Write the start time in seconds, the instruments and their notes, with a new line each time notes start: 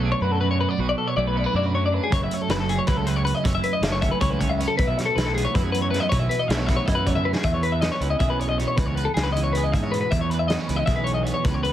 Already playing: fingered electric bass B1, clean electric guitar B2 F#3 A3 F#4
0.03 clean electric guitar D4 G#4
0.12 clean electric guitar C#5
0.21 fingered electric bass F#2, clean electric guitar F#4 B4
0.32 clean electric guitar A4
0.41 clean electric guitar F#2 B4
0.51 clean electric guitar C#5
0.61 clean electric guitar B3 B4
0.69 clean electric guitar D4 D5
0.78 fingered electric bass B1, clean electric guitar B2 F#4 B4
0.89 clean electric guitar D5
0.98 clean electric guitar A4
1.08 clean electric guitar C#5
1.16 fingered electric bass B1, clean electric guitar F#3 A3 D5
1.27 clean electric guitar B4
1.36 clean electric guitar B3 D5
1.44 clean electric guitar D4 B4
1.54 fingered electric bass F#2, clean electric guitar E4 D5
1.63 clean electric guitar F#4 B4
1.74 clean electric guitar F#2 C#5
1.86 clean electric guitar D5
1.92 clean electric guitar D4 B4
2.03 clean electric guitar G#4
2.10 fingered electric bass F#1, clean electric guitar F#2 E4 C#5, kick, closed hi-hat
2.24 clean electric guitar E5
2.31 clean electric guitar C#5, closed hi-hat
2.42 clean electric guitar A4
2.48 fingered electric bass F#1, clean electric guitar F#3 A3 B4, snare, closed hi-hat
2.60 clean electric guitar A4
2.69 clean electric guitar C#4 G#4, closed hi-hat
2.79 clean electric guitar C#5
2.87 fingered electric bass C#2, clean electric guitar E4 B4, kick, snare, closed hi-hat
2.97 clean electric guitar A4
3.05 clean electric guitar C#3 B4, closed hi-hat
3.16 clean electric guitar C#5
3.25 clean electric guitar C#4 B4, closed hi-hat
3.35 clean electric guitar D#5
3.43 fingered electric bass F#1, clean electric guitar F#2 E4 C#5, kick, closed hi-hat
3.55 clean electric guitar E5
3.63 clean electric guitar B4, closed hi-hat
3.73 clean electric guitar D#5
3.81 fingered electric bass F#1, clean electric guitar F#3 A3 E5, snare, closed hi-hat
3.92 clean electric guitar C#5
4.01 clean electric guitar C#4 E5, kick, closed hi-hat
4.11 clean electric guitar B4
4.21 fingered electric bass C#2, clean electric guitar E4 C#5, kick, closed hi-hat
4.30 clean electric guitar B4
4.39 clean electric guitar C#3 C#5, kick, closed hi-hat
4.49 clean electric guitar E5
4.59 clean electric guitar B3 C#5, closed hi-hat
4.68 clean electric guitar C#4 A4
4.77 fingered electric bass B1, clean electric guitar B2 E4 B4, kick, closed hi-hat
4.87 clean electric guitar E5
4.98 clean electric guitar C#5, snare, closed hi-hat
5.06 clean electric guitar A4
5.16 fingered electric bass B1, clean electric guitar E3 A3 B4, snare, closed hi-hat
5.25 clean electric guitar A4
5.35 clean electric guitar B3 G#4, closed hi-hat
5.45 clean electric guitar C#5
5.54 fingered electric bass F#2, clean electric guitar E4 B4, kick, closed hi-hat
5.64 clean electric guitar G#4
5.72 clean electric guitar F#2 B4, closed hi-hat
5.82 clean electric guitar C#5
5.91 clean electric guitar B3 B4, closed hi-hat
5.95 snare
6.00 clean electric guitar D#5
6.09 fingered electric bass B1, clean electric guitar B2 E4 C#5, kick, closed hi-hat
6.19 clean electric guitar E5
6.29 clean electric guitar B4, closed hi-hat
6.39 clean electric guitar D#5
6.48 fingered electric bass B1, clean electric guitar E3 A3 E5, snare, closed hi-hat
6.57 clean electric guitar C#5
6.67 clean electric guitar B3 E5, kick, snare, closed hi-hat
6.77 clean electric guitar C#5
6.86 fingered electric bass F#2, clean electric guitar E4 D#5, kick, closed hi-hat
6.95 clean electric guitar B4
7.06 clean electric guitar F#2 C#5, kick, closed hi-hat
7.15 clean electric guitar E5, high tom
7.25 clean electric guitar B3 B4
7.34 clean electric guitar G#4, snare
7.43 fingered electric bass E2, clean electric guitar E2 E5, kick, closed hi-hat
7.54 clean electric guitar C#5
7.63 clean electric guitar B4, closed hi-hat
7.72 clean electric guitar E5
7.81 clean electric guitar C#4 D#5, snare, closed hi-hat
7.92 clean electric guitar C#5
8.00 fingered electric bass C#2, clean electric guitar E3 B4, closed hi-hat
8.10 clean electric guitar D#5
8.19 fingered electric bass B1, clean electric guitar G#4 E5, kick, closed hi-hat
8.30 clean electric guitar B4
8.40 clean electric guitar C#5, closed hi-hat
8.49 clean electric guitar D#5
8.58 clean electric guitar B2 C#5, closed hi-hat
8.68 clean electric guitar C#5
8.76 fingered electric bass C#2, clean electric guitar E2 B4, kick, closed hi-hat
8.86 clean electric guitar C#5
8.95 clean electric guitar B4, closed hi-hat
9.05 clean electric guitar A4
9.14 fingered electric bass C#2, clean electric guitar C#4 G#4, snare, closed hi-hat
9.23 clean electric guitar B4
9.32 clean electric guitar E3 D#5, closed hi-hat
9.43 clean electric guitar C#5
9.53 clean electric guitar B4, closed hi-hat
9.57 clean electric guitar G#4
9.63 clean electric guitar D#5
9.72 fingered electric bass G#2, clean electric guitar E5, kick, closed hi-hat
9.83 clean electric guitar C#5
9.92 clean electric guitar B2 B4, closed hi-hat
10.01 clean electric guitar B4
10.11 fingered electric bass E2, clean electric guitar E2 E5, kick, closed hi-hat
10.21 clean electric guitar C#5
10.30 clean electric guitar B4, closed hi-hat
10.34 clean electric guitar B4
10.39 clean electric guitar E5
10.48 clean electric guitar B3 D#5, snare, closed hi-hat
10.58 clean electric guitar C#4 C#5
10.68 fingered electric bass C#2, clean electric guitar E3 B4, closed hi-hat
10.76 clean electric guitar D#5
10.86 fingered electric bass B1, clean electric guitar E5, kick, snare, closed hi-hat
10.90 clean electric guitar G#4
10.96 clean electric guitar B4
11.04 clean electric guitar C#5, closed hi-hat
11.14 clean electric guitar D#5
11.23 clean electric guitar B2 C#5, closed hi-hat
11.34 clean electric guitar C#5
11.44 fingered electric bass C#2, clean electric guitar E2 B4, kick, closed hi-hat
11.54 clean electric guitar C#5
11.63 clean electric guitar B4, closed hi-hat